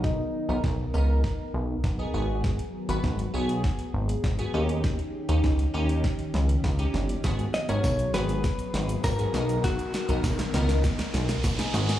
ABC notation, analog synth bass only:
X:1
M:4/4
L:1/16
Q:1/4=100
K:G#m
V:1 name="Analog synth bass" clef=bass
B,,,2 z B,,, B,,,2 C,,3 z B,,,2 B,,,2 G,,,2- | G,,,2 z G,,, G,,,2 B,,,3 z G,,,2 G,,,2 D,,2- | D,,2 z D,, C,,2 D,,3 z C,,2 C,,2 =G,,,2 | G,,,2 z G,,, B,,,2 G,,,3 z G,,,2 G,,,2 B,,,2- |
B,,,2 z B,,, B,,,2 C,,3 z B,,,2 B,,,2 G,,,2 |]